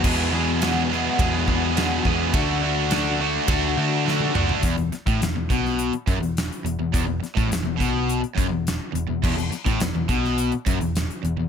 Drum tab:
CC |x---------------|----------------|----------------|----------------|
RD |----b---b---b---|b---b---b-------|----------------|----------------|
HH |----------------|----------------|xxxxx-x-xxxxxxx-|x-xxx-x-xxx-x-x-|
SD |----o-o-----o---|----o-------o---|--o-o--o----o---|--o-o-------o---|
T1 |----------------|-------------o--|----------------|----------------|
T2 |----------------|--------------o-|----------------|----------------|
FT |----------------|---------------o|----------------|----------------|
BD |o-------o-o---o-|o-------o-------|o--o--o---o-----|o--o--o---o-----|

CC |x---------------|
RD |----------------|
HH |-xxxx-x-xxxxxxx-|
SD |--o-o--o----o---|
T1 |----------------|
T2 |----------------|
FT |----------------|
BD |o--o--o---o-----|